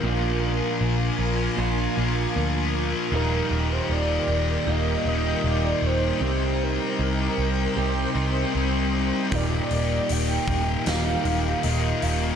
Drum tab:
HH |--------|--------|--------|oooooooo|
SD |--------|--------|--------|----o---|
BD |--------|--------|--------|o--o----|